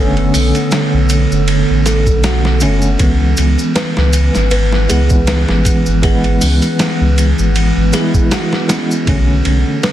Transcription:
Already playing: sub bass F#1, tine electric piano D3 A3 C#4, ambient pad D3 B3 A4, music box A4
0.17 ride
0.34 sub bass B1, music box C#4, open hi-hat, maracas
0.55 ride, maracas
0.71 snare, ride, maracas
0.93 sub bass B1
1.09 ride, maracas
1.32 sub bass F#1, maracas
1.48 ride, maracas
1.70 sub bass A1
1.86 music box A4, snare, ride, maracas
2.06 sub bass B1, kick, maracas
2.24 music box F#4, snare, ride, maracas
2.45 snare
2.60 sub bass F#1, tine electric piano D3 A3 C#4, music box C#4, ride, maracas
2.82 maracas
2.97 sub bass C#2, tine electric piano E3 G#3, ambient pad E3 C#4 B4, kick, ride, maracas
3.01 tine electric piano B3
3.37 sub bass C#2, ride, maracas
3.59 maracas
3.75 music box B4, snare, ride, maracas
3.97 sub bass C#2, snare
4.13 ride, maracas
4.35 sub bass G#1, snare, maracas
4.51 music box B4, ride, maracas
4.73 snare
4.87 sub bass C#2, tine electric piano E3 G#3 B3, music box G#4, ride, maracas
5.09 kick, maracas
5.27 music box B4, snare, ride, maracas
5.49 sub bass G#1, snare
5.65 kick, ride, maracas
5.86 sub bass G#1, maracas
6.02 tine electric piano E3 G#3 B3, ambient pad B3, music box G#4, kick, ride, maracas
6.24 ride
6.41 sub bass C#2, music box C#4, open hi-hat, maracas
6.62 ride, maracas
6.79 snare, ride, maracas
7.01 sub bass C#2
7.18 ride, maracas
7.38 sub bass G#1, maracas
7.55 ride, maracas
7.77 sub bass G#1
7.92 tine electric piano E3 G#3 E4, music box G#4, snare, ride, maracas
8.14 kick, maracas
8.31 music box F#4, snare, ride, maracas
8.53 snare
8.68 tine electric piano E3 G#3 B3, music box C#4, snare, ride, maracas
8.91 maracas
9.05 sub bass B1, tine electric piano D3 A3 C#4, ambient pad D3 B3 A4, kick, ride
9.45 sub bass B1, ride
9.83 music box B4, snare, ride

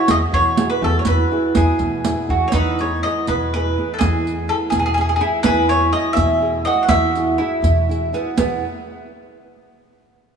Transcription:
Already playing: mandolin F#4
0.08 upright bass E2, nylon-string guitar E4 F#4 G#4, mandolin D#5, riq
0.32 upright bass E2, nylon-string guitar B2, mandolin C#5
0.57 nylon-string guitar E4 F#4 G#4, riq
0.70 mandolin B4
0.82 upright bass E2, nylon-string guitar E4 F#4 G#4, mandolin A4
0.99 mandolin C#5
1.05 upright bass E2, nylon-string guitar E3, mandolin B4, riq
1.31 nylon-string guitar E4 F#4 G#4
1.55 upright bass E2, nylon-string guitar E4 F#4 G#4, mandolin G#4, riq
1.79 upright bass E2, nylon-string guitar B2, riq
2.05 nylon-string guitar E4 F#4 G#4, riq
2.29 upright bass E2, nylon-string guitar E4 F#4 G#4, mandolin F#4
2.48 mandolin C#5
2.52 upright bass E2, nylon-string guitar E3, mandolin D#4 B4, riq
2.79 nylon-string guitar E3 B3 G#4, mandolin C#5, riq
3.03 nylon-string guitar E3 B3 G#4, mandolin D#5
3.27 upright bass E2, nylon-string guitar B2, mandolin B4, riq
3.54 nylon-string guitar E3 B3 G#4, mandolin B4, riq
3.78 nylon-string guitar E3 B3 G#4
3.94 mandolin A4
3.99 upright bass E2, nylon-string guitar E3, mandolin G#4, riq
4.26 nylon-string guitar E3 B3 G#4, riq
4.48 nylon-string guitar E3 B3 G#4, mandolin A4
4.70 upright bass E2, nylon-string guitar B2, mandolin G#4, riq
4.79 mandolin G#4
4.86 mandolin G#4
4.94 mandolin G#4, riq
4.98 nylon-string guitar B3 E4 G#4, mandolin G#4
5.09 mandolin G#4
5.16 nylon-string guitar B3, mandolin G#4
5.20 nylon-string guitar E4 G#4, mandolin E4
5.43 upright bass E2, nylon-string guitar E3, mandolin G#4 B4, riq
5.69 nylon-string guitar E4 F#4 G#4, mandolin C#5, riq
5.92 nylon-string guitar E4 F#4 G#4, mandolin D#5
6.13 upright bass E2, nylon-string guitar B2, mandolin E5, riq
6.41 nylon-string guitar E4 F#4 G#4
6.65 nylon-string guitar E4 F#4 G#4, mandolin F#4 D#5
6.83 mandolin F#5
6.88 upright bass E2, nylon-string guitar E3, mandolin E5, riq
7.15 nylon-string guitar E4 F#4 G#4, riq
7.38 mandolin E4, nylon-string guitar E4 F#4 G#4
7.62 upright bass E2, nylon-string guitar B2, riq
7.89 nylon-string guitar E4 F#4 G#4, riq
8.13 mandolin B3, nylon-string guitar E4 F#4 G#4, riq
8.36 nylon-string guitar E2 B2 F#3 E4 G#4 B4, upright bass E2, mandolin B3, riq

